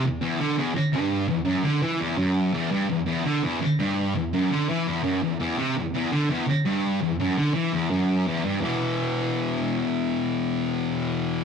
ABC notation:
X:1
M:4/4
L:1/8
Q:1/4=168
K:Em
V:1 name="Distorted electric guitar" clef=bass
E,, E,, D, E,, z G,,2 E,, | F,, D, E, E,, F,,2 E,, G,, | E,, E,, D, E,, z G,,2 E,, | F,, D, E, E,, F,, E,, E,, C, |
E,, E,, D, E,, z G,,2 E,, | F,, D, E, E,, F,,2 E,, G,, | [E,,B,,E,]8- | [E,,B,,E,]8 |]